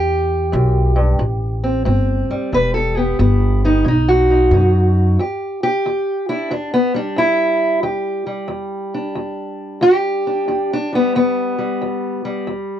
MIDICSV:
0, 0, Header, 1, 4, 480
1, 0, Start_track
1, 0, Key_signature, 1, "minor"
1, 0, Tempo, 663717
1, 1825, Time_signature, 4, 2, 24, 8
1, 9256, End_track
2, 0, Start_track
2, 0, Title_t, "Steel-string acoustic guitar"
2, 0, Program_c, 0, 25
2, 0, Note_on_c, 0, 40, 76
2, 0, Note_on_c, 0, 67, 96
2, 344, Note_off_c, 0, 40, 0
2, 377, Note_on_c, 0, 42, 60
2, 690, Note_off_c, 0, 42, 0
2, 693, Note_on_c, 0, 43, 61
2, 861, Note_off_c, 0, 43, 0
2, 861, Note_on_c, 0, 45, 73
2, 1183, Note_on_c, 0, 60, 52
2, 1310, Note_off_c, 0, 45, 0
2, 1334, Note_off_c, 0, 60, 0
2, 1340, Note_on_c, 0, 45, 78
2, 1344, Note_on_c, 0, 60, 47
2, 1668, Note_on_c, 0, 55, 52
2, 1790, Note_off_c, 0, 45, 0
2, 1804, Note_off_c, 0, 60, 0
2, 1831, Note_off_c, 0, 67, 0
2, 1831, Note_on_c, 0, 40, 75
2, 1840, Note_on_c, 0, 71, 94
2, 1979, Note_off_c, 0, 71, 0
2, 1982, Note_on_c, 0, 69, 80
2, 2144, Note_off_c, 0, 55, 0
2, 2149, Note_off_c, 0, 69, 0
2, 2149, Note_on_c, 0, 59, 47
2, 2149, Note_on_c, 0, 67, 75
2, 2275, Note_off_c, 0, 40, 0
2, 2306, Note_off_c, 0, 59, 0
2, 2307, Note_on_c, 0, 40, 68
2, 2315, Note_on_c, 0, 59, 47
2, 2625, Note_off_c, 0, 59, 0
2, 2636, Note_on_c, 0, 59, 49
2, 2641, Note_on_c, 0, 63, 75
2, 2753, Note_off_c, 0, 40, 0
2, 2774, Note_off_c, 0, 59, 0
2, 2781, Note_on_c, 0, 47, 76
2, 2787, Note_off_c, 0, 67, 0
2, 2792, Note_off_c, 0, 63, 0
2, 2807, Note_on_c, 0, 63, 71
2, 2954, Note_on_c, 0, 66, 85
2, 3104, Note_off_c, 0, 63, 0
2, 3113, Note_on_c, 0, 63, 52
2, 3230, Note_off_c, 0, 47, 0
2, 3272, Note_off_c, 0, 63, 0
2, 3276, Note_on_c, 0, 47, 67
2, 3282, Note_on_c, 0, 63, 45
2, 3718, Note_off_c, 0, 47, 0
2, 3734, Note_off_c, 0, 63, 0
2, 3750, Note_off_c, 0, 66, 0
2, 3756, Note_on_c, 0, 40, 79
2, 3764, Note_on_c, 0, 67, 51
2, 4070, Note_off_c, 0, 67, 0
2, 4073, Note_on_c, 0, 67, 95
2, 4198, Note_off_c, 0, 40, 0
2, 4236, Note_on_c, 0, 40, 69
2, 4546, Note_off_c, 0, 67, 0
2, 4549, Note_on_c, 0, 64, 69
2, 4553, Note_on_c, 0, 62, 50
2, 4678, Note_off_c, 0, 40, 0
2, 4705, Note_on_c, 0, 40, 70
2, 4706, Note_off_c, 0, 62, 0
2, 4708, Note_off_c, 0, 64, 0
2, 4709, Note_on_c, 0, 62, 74
2, 4868, Note_off_c, 0, 62, 0
2, 4872, Note_on_c, 0, 59, 85
2, 5021, Note_on_c, 0, 55, 50
2, 5029, Note_off_c, 0, 59, 0
2, 5034, Note_on_c, 0, 62, 76
2, 5152, Note_off_c, 0, 40, 0
2, 5180, Note_on_c, 0, 40, 72
2, 5190, Note_off_c, 0, 62, 0
2, 5193, Note_on_c, 0, 64, 104
2, 5630, Note_off_c, 0, 40, 0
2, 5661, Note_off_c, 0, 64, 0
2, 5662, Note_on_c, 0, 40, 79
2, 5664, Note_on_c, 0, 67, 53
2, 5975, Note_off_c, 0, 55, 0
2, 5978, Note_on_c, 0, 55, 46
2, 6111, Note_off_c, 0, 40, 0
2, 6132, Note_on_c, 0, 40, 74
2, 6468, Note_on_c, 0, 62, 44
2, 6585, Note_off_c, 0, 40, 0
2, 6620, Note_on_c, 0, 40, 67
2, 7069, Note_off_c, 0, 40, 0
2, 7095, Note_on_c, 0, 40, 73
2, 7103, Note_off_c, 0, 67, 0
2, 7105, Note_on_c, 0, 67, 107
2, 7423, Note_off_c, 0, 62, 0
2, 7426, Note_on_c, 0, 62, 52
2, 7546, Note_off_c, 0, 40, 0
2, 7578, Note_on_c, 0, 40, 72
2, 7579, Note_off_c, 0, 62, 0
2, 7581, Note_on_c, 0, 62, 57
2, 7744, Note_off_c, 0, 67, 0
2, 7760, Note_off_c, 0, 62, 0
2, 7763, Note_on_c, 0, 62, 82
2, 7899, Note_off_c, 0, 55, 0
2, 7902, Note_on_c, 0, 55, 50
2, 7913, Note_off_c, 0, 62, 0
2, 7921, Note_on_c, 0, 59, 82
2, 8027, Note_off_c, 0, 40, 0
2, 8060, Note_off_c, 0, 59, 0
2, 8066, Note_on_c, 0, 40, 78
2, 8071, Note_on_c, 0, 59, 94
2, 8376, Note_off_c, 0, 55, 0
2, 8379, Note_on_c, 0, 55, 49
2, 8510, Note_off_c, 0, 40, 0
2, 8546, Note_on_c, 0, 40, 69
2, 8856, Note_off_c, 0, 55, 0
2, 8858, Note_on_c, 0, 55, 53
2, 8989, Note_off_c, 0, 40, 0
2, 9019, Note_on_c, 0, 40, 66
2, 9023, Note_off_c, 0, 59, 0
2, 9256, Note_off_c, 0, 40, 0
2, 9256, Note_off_c, 0, 55, 0
2, 9256, End_track
3, 0, Start_track
3, 0, Title_t, "Upright bass"
3, 0, Program_c, 1, 32
3, 0, Note_on_c, 1, 40, 72
3, 368, Note_off_c, 1, 40, 0
3, 384, Note_on_c, 1, 35, 97
3, 850, Note_off_c, 1, 35, 0
3, 861, Note_on_c, 1, 33, 83
3, 1329, Note_off_c, 1, 33, 0
3, 1346, Note_on_c, 1, 31, 88
3, 1637, Note_off_c, 1, 31, 0
3, 1825, Note_on_c, 1, 28, 75
3, 2291, Note_off_c, 1, 28, 0
3, 2309, Note_on_c, 1, 31, 96
3, 2773, Note_off_c, 1, 31, 0
3, 2789, Note_on_c, 1, 35, 74
3, 3253, Note_off_c, 1, 35, 0
3, 3263, Note_on_c, 1, 42, 94
3, 3730, Note_off_c, 1, 42, 0
3, 9256, End_track
4, 0, Start_track
4, 0, Title_t, "Muted upright bass strokes"
4, 1661, Note_on_c, 9, 29, 38
4, 1733, Note_off_c, 9, 29, 0
4, 9256, End_track
0, 0, End_of_file